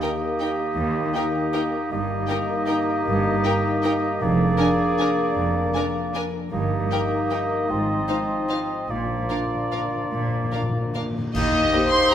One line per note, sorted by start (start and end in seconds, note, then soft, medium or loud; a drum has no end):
0.00 0.76 D#3 medium
0.00 1.75 A#3 medium
0.00 1.89 A#3 medium
0.00 1.93 A#3 medium
0.00 0.95 D#4 medium
0.00 0.09 D#4 soft
0.00 1.75 G4 medium
0.00 1.88 G4 medium
0.00 1.14 G4 medium
0.00 2.48 A#4 medium
0.00 0.11 A#4 medium
0.00 1.88 D#5 medium
0.00 0.09 G5 medium
0.21 0.58 D#5 medium
0.40 0.49 D#4 soft
0.40 0.51 A#4 soft
0.40 0.48 G5 medium
0.40 1.54 G5 medium
0.59 1.33 D#5 medium
0.77 1.08 D#2 medium
0.77 1.09 D#2 medium
0.77 1.93 D#3 medium
0.96 2.29 D#4 medium
1.15 1.23 D#4 medium
1.15 4.23 G4 medium
1.15 1.24 A#4 medium
1.15 1.23 G5 medium
1.34 1.73 D#5 medium
1.54 1.62 D#4 medium
1.54 1.62 A#4 medium
1.54 1.62 G5 medium
1.54 4.24 G5 medium
1.74 2.69 D#5 medium
1.92 2.24 G1 medium
1.92 3.06 G2 medium
1.92 2.23 G2 medium
1.92 4.18 A#3 medium
1.92 4.18 D#4 medium
1.92 4.25 G4 medium
1.92 4.18 D#5 medium
2.11 3.24 A#3 medium
2.28 2.37 D#4 medium
2.28 3.43 D#4 medium
2.28 2.38 A#4 medium
2.28 2.36 G5 medium
2.50 2.88 A#4 medium
2.68 2.77 D#4 medium
2.68 2.76 A#4 medium
2.68 3.83 D#5 medium
2.68 2.76 G5 medium
2.89 3.62 A#4 medium
3.07 3.38 G1 medium
3.07 3.38 G2 medium
3.07 4.23 G2 medium
3.25 4.38 A#3 medium
3.44 4.23 D#4 medium
3.44 3.52 D#4 medium
3.44 3.54 A#4 medium
3.44 3.53 G5 medium
3.63 4.02 A#4 medium
3.84 3.93 D#4 medium
3.84 3.92 A#4 medium
3.84 4.23 D#5 medium
3.84 3.92 G5 medium
4.03 4.77 A#4 medium
4.21 4.53 F1 medium
4.21 5.35 F2 medium
4.21 4.53 F2 medium
4.21 6.21 A#3 medium
4.21 6.49 A#3 medium
4.21 6.53 D4 medium
4.21 6.25 G#4 medium
4.21 6.21 D5 medium
4.39 5.53 A#3 medium
4.58 5.73 D4 medium
4.58 4.67 D4 medium
4.58 4.66 A#4 medium
4.58 4.67 G#5 medium
4.79 5.16 A#4 medium
4.98 5.07 D4 medium
4.98 5.08 A#4 medium
4.98 6.13 D5 medium
4.98 5.06 G#5 medium
5.18 5.93 A#4 medium
5.36 5.68 F1 medium
5.36 6.54 F2 medium
5.36 5.68 F2 medium
5.54 6.70 A#3 medium
5.74 6.54 D4 medium
5.74 5.83 D4 medium
5.74 5.84 A#4 medium
5.74 5.82 G#5 medium
5.94 6.33 A#4 medium
6.14 6.22 D4 medium
6.14 6.23 A#4 medium
6.14 6.54 D5 medium
6.14 6.22 G#5 medium
6.34 7.11 A#4 medium
6.51 6.85 G1 medium
6.51 7.71 G2 medium
6.51 6.85 G2 medium
6.51 7.67 A#3 medium
6.51 7.71 A#3 medium
6.51 8.86 D#4 medium
6.51 7.72 G4 medium
6.51 8.92 D#5 medium
6.71 7.71 A#3 medium
6.91 6.99 D#4 soft
6.91 8.07 D#4 medium
6.91 7.01 A#4 medium
6.91 6.99 G5 medium
7.12 7.50 A#4 medium
7.30 7.41 D#4 soft
7.30 7.38 A#4 soft
7.30 8.48 D#5 medium
7.30 7.39 G5 soft
7.51 7.71 A#4 medium
7.69 8.02 G#1 medium
7.69 8.01 G#2 medium
7.69 8.92 G#2 medium
7.69 8.90 F3 medium
7.69 8.89 C4 medium
7.69 8.90 F4 medium
7.89 8.92 C4 soft
8.08 8.92 D#4 soft
8.08 8.17 D#4 medium
8.08 8.16 C5 soft
8.08 8.16 F5 medium
8.29 8.68 C5 medium
8.49 8.59 D#4 soft
8.49 8.58 C5 soft
8.49 8.91 D#5 soft
8.49 8.57 F5 soft
8.69 8.91 C5 medium
8.89 9.23 A#1 medium
8.89 8.96 A#2 soft
8.89 10.11 A#2 medium
8.89 9.24 A#2 medium
8.89 11.12 F3 medium
8.89 11.12 A#3 medium
8.89 11.12 D4 medium
8.89 11.12 F4 medium
8.89 11.16 D5 medium
8.97 9.04 A#2 soft
9.05 9.12 A#2 soft
9.09 10.31 A#3 soft
9.20 9.28 A#2 soft
9.30 9.36 A#2 soft
9.30 9.39 D4 soft
9.30 10.52 D4 soft
9.30 9.38 A#4 soft
9.30 9.39 F5 soft
9.37 9.44 A#2 soft
9.45 9.53 A#2 soft
9.52 9.62 A#2 soft
9.52 9.91 A#4 soft
9.63 9.70 A#2 soft
9.71 9.78 A#2 soft
9.71 9.82 D4 soft
9.71 9.80 A#4 soft
9.71 10.94 D5 soft
9.71 9.79 F5 soft
9.79 9.86 A#2 soft
9.88 9.95 A#2 soft
9.93 10.03 A#2 soft
9.93 10.73 A#4 medium
10.04 10.11 A#2 soft
10.13 10.47 A#1 medium
10.13 10.19 A#2 medium
10.13 11.35 A#2 medium
10.13 10.47 A#2 medium
10.21 10.27 A#2 medium
10.28 10.35 A#2 medium
10.32 10.43 A#2 medium
10.32 11.53 A#3 soft
10.45 10.51 A#2 medium
10.52 10.60 A#2 medium
10.52 11.36 D4 soft
10.52 10.63 D4 soft
10.52 10.61 A#4 soft
10.52 10.61 F5 soft
10.62 10.68 A#2 medium
10.69 10.75 A#2 medium
10.74 10.84 A#2 medium
10.74 11.14 A#4 soft
10.85 10.92 A#2 medium
10.93 11.00 A#2 medium
10.93 11.04 D4 soft
10.93 11.03 A#4 soft
10.93 11.36 D5 soft
10.93 11.04 F5 soft
11.01 11.09 A#2 medium
11.10 11.17 A#2 medium
11.16 11.24 A#2 medium
11.16 12.11 A#4 soft
11.25 11.32 A#2 medium
11.34 11.66 D#2 medium
11.34 12.14 D#3 medium
11.34 12.14 A#3 medium
11.34 11.94 D#4 medium
11.34 12.14 G4 medium
11.34 11.89 D#5 medium
11.34 12.14 D#6 medium
11.34 concert bass drum medium
11.34 crash medium
11.54 12.14 A#3 medium
11.73 11.82 G3 medium
11.73 11.82 A#3 soft
11.73 12.14 D#4 soft
11.73 11.81 D#4 medium
11.73 11.81 G4 medium
11.73 12.14 C5 medium
11.92 12.14 G4 medium
11.92 12.14 C5 medium
11.92 12.12 C6 medium
12.11 12.14 D#4 soft
12.11 12.14 G4 medium
12.11 12.14 A#5 medium